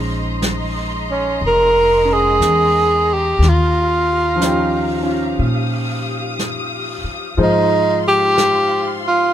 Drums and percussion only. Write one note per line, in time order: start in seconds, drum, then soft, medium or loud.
0.42 brush sweep soft
0.42 snare soft
0.42 hi-hat pedal medium
1.42 brush sweep soft
2.42 brush sweep soft
2.42 snare soft
2.42 hi-hat pedal medium
3.42 brush sweep soft
3.42 snare soft
4.41 brush sweep soft
4.41 snare soft
4.41 hi-hat pedal medium
5.41 brush sweep soft
6.39 brush sweep soft
6.39 snare soft
6.39 hi-hat pedal soft
7.39 brush sweep soft
8.38 brush sweep soft
8.38 snare soft
8.38 hi-hat pedal soft